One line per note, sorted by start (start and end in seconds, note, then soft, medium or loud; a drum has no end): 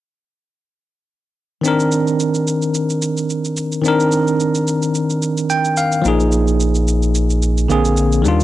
1.61 3.79 D#3 medium
1.61 3.80 C4 medium
1.61 shaker medium
1.66 3.81 D4 medium
1.66 3.82 A#4 medium
1.80 shaker soft
1.92 shaker medium
2.07 shaker soft
2.20 shaker medium
2.35 shaker medium
2.47 shaker medium
2.62 shaker soft
2.75 shaker medium
2.90 shaker medium
3.02 shaker medium
3.17 shaker medium
3.30 shaker medium
3.45 shaker medium
3.57 shaker medium
3.72 shaker soft
3.82 5.99 D#3 medium
3.82 6.00 C4 medium
3.82 shaker medium
3.86 6.02 D4 medium
3.86 6.03 A#4 medium
4.00 shaker soft
4.12 shaker medium
4.27 shaker soft
4.40 shaker medium
4.55 shaker medium
4.68 shaker medium
4.82 shaker soft
4.95 shaker medium
5.10 shaker medium
5.22 shaker medium
5.37 shaker medium
5.50 5.75 G5 medium
5.50 shaker medium
5.65 shaker medium
5.77 6.03 F5 medium
5.77 shaker medium
5.92 shaker medium
6.02 7.67 A#1 medium
6.02 7.65 F3 medium
6.02 7.66 A#3 medium
6.02 shaker medium
6.06 7.67 D#4 medium
6.06 7.68 G#4 medium
6.20 shaker soft
6.32 shaker medium
6.48 shaker soft
6.60 shaker medium
6.75 shaker medium
6.88 shaker medium
7.02 shaker soft
7.15 shaker medium
7.30 shaker medium
7.42 shaker medium
7.58 shaker medium
7.68 8.24 A#1 medium
7.68 8.24 D3 medium
7.68 8.25 A#3 medium
7.68 8.25 C4 medium
7.68 8.26 G#4 medium
7.68 shaker medium
7.85 shaker medium
7.97 shaker medium
8.12 shaker medium
8.22 8.44 D#2 medium
8.22 8.44 D#3 medium
8.22 8.44 G3 medium
8.22 shaker medium
8.26 8.44 D4 medium
8.26 8.44 F4 medium
8.40 shaker medium